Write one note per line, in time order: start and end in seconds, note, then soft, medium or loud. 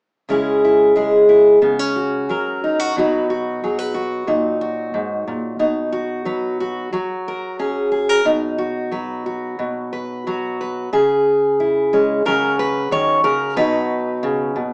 0.29 1.61 C#3 soft
0.29 0.94 G#3 soft
0.29 1.59 C#4 soft
0.29 0.63 E4 soft
0.29 0.95 G#4 soft
0.65 1.28 E4 soft
0.96 1.58 G#3 soft
0.96 1.63 G#4 soft
1.29 1.58 E4 soft
1.62 2.29 C#3 medium
1.62 1.79 B3 soft
1.79 2.96 C#4 soft
1.96 2.63 F#4 soft
2.29 2.97 F#3 soft
2.29 2.92 A#4 soft
2.64 2.80 D#4 soft
2.79 2.96 F#4 soft
2.96 4.24 B2 medium
2.96 3.63 F#3 soft
2.96 4.25 D#4 soft
2.96 3.30 F#4 soft
2.96 3.63 B4 soft
3.30 3.94 F#4 soft
3.64 6.25 F#3 soft
3.64 3.79 G#4 soft
3.79 4.28 B4 soft
3.94 4.61 F#4 soft
4.27 4.94 A#2 medium
4.27 5.56 D#4 soft
4.61 5.92 F#4 medium
4.94 5.27 G#2 soft
5.28 5.59 A#2 medium
5.59 6.88 B2 soft
5.59 6.88 D#4 soft
5.92 6.60 F#4 soft
6.25 6.92 F#3 soft
6.25 6.88 B4 soft
6.60 6.93 F#4 soft
6.93 8.90 F#3 medium
6.93 8.21 F#4 soft
7.28 7.59 A#4 medium
7.59 8.21 C#4 soft
7.59 7.91 G#4 soft
7.92 8.09 G#4 soft
8.09 8.25 A#4 soft
8.25 9.57 B2 medium
8.25 10.88 D#4 soft
8.58 9.24 F#4 soft
8.91 10.25 F#3 soft
8.91 9.91 B4 soft
9.26 10.25 F#4 soft
9.59 10.88 B2 medium
9.93 10.59 B4 medium
10.27 10.93 F#3 soft
10.27 10.89 F#4 soft
10.61 10.89 B4 soft
10.93 12.24 C#3 medium
10.93 12.26 G#4 medium
11.60 12.22 E4 soft
11.93 12.21 G#3 soft
11.93 12.22 C#4 soft
12.25 12.91 C#3 medium
12.25 13.57 F#3 soft
12.25 13.54 C#4 soft
12.25 13.59 F#4 soft
12.25 12.58 A#4 medium
12.59 12.92 B4 medium
12.91 13.23 D#3 medium
12.91 13.24 C#5 medium
13.24 13.57 C#3 medium
13.24 13.56 A#4 medium
13.56 14.54 B2 medium
13.56 14.73 F#3 soft
13.56 14.73 D#4 soft
13.56 14.73 F#4 soft
13.56 14.73 B4 medium
14.23 14.56 C#3 medium
14.56 14.73 B2 soft